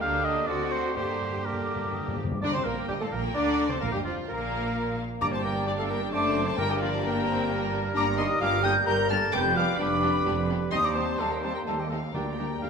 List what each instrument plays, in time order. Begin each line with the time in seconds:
0.01 double bass section D2, bassoon D3, french horn section A#3 G4, viola section A#3, cello section D4, violin section D4 G4, clarinet G4, oboe F5, flute section A#5
0.25 oboe D#5
0.47 double bass section D2, bassoon D3, viola section C4, french horn section C4 F#4, violin section D4 F#4, cello section F#4, clarinet F#4, oboe D5, flute section C6
0.71 oboe C5
0.96 timpani G2, double bass section G2, bassoon D3, viola section A#3, french horn section A#3 G4, violin section D4 G4, clarinet G4, cello section G4, oboe C5, flute section A#5
1.04 timpani G2
1.13 timpani G2
1.22 timpani G2
1.30 timpani G2
1.37 timpani G2
1.45 timpani G2, bassoon D3, french horn section A#3 G4, viola section A#3, violin section D4 G4, clarinet G4, oboe A#4, flute section D6
1.53 timpani G2
1.61 timpani G2
1.68 timpani G2
1.76 timpani G2
1.85 timpani G2
1.92 timpani G2, flute section D#6
2.00 timpani G2
2.08 timpani G2
2.16 timpani G2, flute section D6
2.24 timpani G2
2.32 timpani G2
2.41 double bass section D2, cello section D3, bassoon D4, french horn section D4, viola section D4, oboe D5, clarinet D5, violin section D5 A#5, flute section D6
2.53 cello section C3, bassoon C4, french horn section C4, viola section C4, oboe C5, violin section C5 A5, clarinet C5, flute section C6
2.64 double bass section A#1, cello section A#2, bassoon A#3, french horn section A#3, viola section A#3, oboe A#4, clarinet A#4, violin section A#4 G5, flute section A#5
2.88 double bass section G1, cello section G2, bassoon G3, french horn section G3, viola section G3, oboe G4, violin section G4 D#5, clarinet G4, flute section G5
3.00 cello section A2, bassoon A3, viola section A3, french horn section A3, oboe A4, violin section A4 F5, clarinet A4, flute section A5
3.12 double bass section A#1, cello section A#2, french horn section A#3, bassoon A#3, viola section A#3, oboe A#4, violin section A#4 G5, clarinet A#4, flute section A#5
3.35 double bass section D2, cello section D3, bassoon D4, french horn section D4, viola section D4, oboe D5, violin section D5 A#5, clarinet D5, flute section D6
3.69 cello section C3, bassoon C4, viola section C4, french horn section C4, violin section C5 A5, oboe C5, clarinet C5, flute section C6
3.80 double bass section A#1, cello section A#2, bassoon A#3, viola section A#3, french horn section A#3, violin section A#4 F5, oboe A#4, clarinet A#4, flute section A#5
3.91 cello section G2, bassoon G3, french horn section G3, viola section G3, violin section G4 D#5, oboe G4, clarinet G4
3.96 flute section G5
4.03 double bass section F1, cello section F2, french horn section F3, bassoon F3, viola section F3, oboe F4, violin section F4 D5
4.08 clarinet F4, flute section F5
4.28 double bass section A#1, cello section A#2, french horn section A#3, bassoon A#3, viola section A#3, violin section A#4 F5, oboe A#4, clarinet A#4, flute section A#5
5.20 double bass section G1, timpani G2, cello section G2, bassoon G3, viola section A#3, french horn section D4, violin section D4 G4 A#5, oboe D5, clarinet D5, flute section D6
5.32 french horn section C4, clarinet C5, violin section A5, flute section C6
5.44 french horn section A#3, clarinet A#4, violin section G5, flute section A#5
5.67 french horn section G3, viola section D4, clarinet G4, violin section D5, flute section G5
5.78 french horn section A3, clarinet A4, violin section F5, flute section A5
5.89 french horn section A#3, clarinet A#4, violin section G5, flute section A#5
6.11 double bass section F#1, cello section F#2, viola section A3 C4, bassoon A3, violin section D4 A4 A5, french horn section D4, oboe C5, clarinet D5, flute section D6
6.46 french horn section C4, clarinet C5, violin section A5, flute section C6
6.57 double bass section G1, timpani G2, cello section G2, viola section G3 A#3, bassoon G3, french horn section A#3, violin section D4 A#4 G5, oboe A#4, clarinet A#4, flute section A#5
6.70 french horn section G3, clarinet G4, violin section D#5, flute section G5
6.81 french horn section F3, clarinet F4, violin section D5, flute section F5
7.04 french horn section A#3, viola section A#3 D4, violin section A#4 G5, clarinet A#4, flute section A#5
7.28 viola section C4
7.50 viola section G3 A#3, violin section D4 A#4
7.94 double bass section G1, cello section G2, viola section G3 A#3, violin section D4 G4 A#5, french horn section D4, clarinet D5, flute section D6
8.17 viola section G3 A#3, violin section D4 G4 C6, french horn section D#4, clarinet D#5, flute section D#6
8.41 double bass section G1, cello section G2, viola section G3 A#3, violin section D4 G4 D6, french horn section F4, clarinet F5, flute section F6
8.63 viola section G3 A#3, violin section D4 G4 D#6, french horn section G4, clarinet G5, flute section G6
8.87 double bass section G1, cello section G2, viola section G3 A#3, violin section D4 G4 G6, french horn section A#4, clarinet A#5, flute section A#5
9.09 viola section G3 A#3, violin section D4 G4 F6, french horn section A4, clarinet A5, flute section A6
9.32 double bass section F1, cello section F2, bassoon G3, viola section G3 B3, violin section D4 G4 D6, french horn section G4, oboe B4, clarinet G5, flute section G6
9.55 viola section G3 B3, violin section D4 G4 D6, french horn section F4, clarinet F5, flute section F6
9.78 double bass section F1, cello section F2, viola section G3 B3, french horn section D4, violin section D4 G4 B5, clarinet D5, flute section D6
10.02 viola section G3 B3, violin section D4 G4
10.25 double bass section F1, cello section F2, viola section G3 B3, violin section D4 G4
10.49 viola section G3 B3, violin section D4 G4
10.71 double bass section D#2, cello section D#2, viola section G3 C4, french horn section D#4, violin section D#4 G4 C6, oboe C5, clarinet D#5, flute section D#6
10.82 french horn section D4, clarinet D5, violin section A#5, flute section D6
10.94 viola section G3 C4, french horn section C4, violin section D#4 G4 A5, clarinet C5, flute section C6
11.19 double bass section D#2, cello section D#2, viola section G3 C4, french horn section A3, violin section D#4 G4 F5, clarinet A4, flute section A5
11.30 french horn section A#3, clarinet A#4, violin section G5, flute section A#5
11.42 viola section G3 C4, french horn section C4, violin section D#4 G4 A5, clarinet C5, flute section C6
11.54 french horn section A#3, clarinet A#4, violin section G5, flute section A#5
11.66 cello section D#2, double bass section D#2, viola section G3 C4, french horn section A3, violin section D#4 G4 F5, clarinet A4, flute section A5
11.77 french horn section G3, clarinet G4, violin section D#5, flute section G5
11.90 viola section G3 C4, french horn section A3, violin section D#4 G4 F5, clarinet A4, flute section A5
12.13 double bass section D2, cello section D2, timpani D3, viola section G3 D4, bassoon G3, french horn section A#3, violin section G4 A#4 G5, clarinet A#4, oboe D5, flute section A#5
12.38 viola section G3 D4, violin section G4 A#4
12.61 double bass section D2, cello section D2, viola section G3 D4, violin section G4 A#4, oboe F5